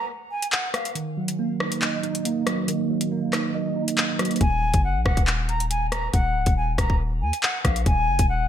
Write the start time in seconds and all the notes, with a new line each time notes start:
0.31 G#5
0.42 closed hi-hat
0.52 F#5, clap
0.74 F5, cross-stick, closed hi-hat
0.85 closed hi-hat
0.95 D#3, closed hi-hat
1.17 F#3
1.28 closed hi-hat
1.39 A#3
1.60 D#4, cross-stick
1.72 closed hi-hat
1.82 D#5, clap
2.03 D#4, closed hi-hat
2.15 closed hi-hat
2.25 A#3, closed hi-hat
2.47 F#3, cross-stick, closed hi-hat
2.68 D#3, closed hi-hat
2.89 F#3
3.01 closed hi-hat
3.12 A#3
3.33 D#4, cross-stick, clap, closed hi-hat
3.55 D#5
3.76 D#4
3.88 closed hi-hat
3.98 A#3, clap
4.19 F#3, cross-stick, closed hi-hat
4.25 closed hi-hat
4.31 closed hi-hat
4.36 closed hi-hat
4.41 D#1 G#5, kick, closed hi-hat
4.74 F#1, kick, closed hi-hat
4.84 F#5
4.96 A#1
5.06 D#1 F#5, kick, cross-stick
5.17 kick, closed hi-hat
5.27 clap
5.49 A#5, closed hi-hat
5.60 closed hi-hat
5.70 G#5, closed hi-hat
5.92 A#5, cross-stick, closed hi-hat
6.13 D#1 F#5, kick, closed hi-hat
6.35 C#1
6.46 D#1, kick, closed hi-hat
6.57 G#5
6.78 D#1 A#5, kick, cross-stick, closed hi-hat
6.90 kick
7.21 D#2 G#5
7.33 closed hi-hat
7.43 F#5, clap
7.65 A#1 F5, kick, cross-stick, closed hi-hat
7.76 closed hi-hat
7.86 D#1 G#5, kick, closed hi-hat
8.08 F#1
8.19 D#1, kick, closed hi-hat
8.29 F#5